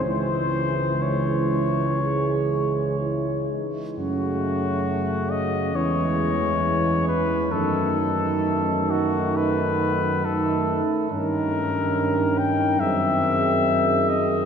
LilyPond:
<<
  \new Staff \with { instrumentName = "Cornet" } { \time 4/4 \key cis \minor \tempo 4 = 68 bis'4 cis''2~ cis''8 r8 | fis'4. dis''8 cis''4. b'8 | a'4. fis'8 b'4 a'8 r8 | ais'4. g''8 e''4. dis''8 | }
  \new Staff \with { instrumentName = "French horn section" } { \time 4/4 \key cis \minor e'4 e'4 gis'4 e'8 dis'8 | cis'2 cis'2 | dis'2. dis'4 | dis'2 gis'2 | }
  \new Staff \with { instrumentName = "Trombone section" } { \time 4/4 \key cis \minor gis2.~ gis8 r8 | a2 gis2 | a2. a4 | cis'2 bis2 | }
  \new Staff \with { instrumentName = "Trombone" } { \clef bass \time 4/4 \key cis \minor e2.~ e8 r8 | cis2 e2 | dis2. dis8 r8 | dis2 dis2 | }
  \new Staff \with { instrumentName = "Tuba" } { \clef bass \time 4/4 \key cis \minor cis,2.~ cis,8 r8 | fis,2 e,2 | fis,2.~ fis,8 r8 | g,2 fis,2 | }
>>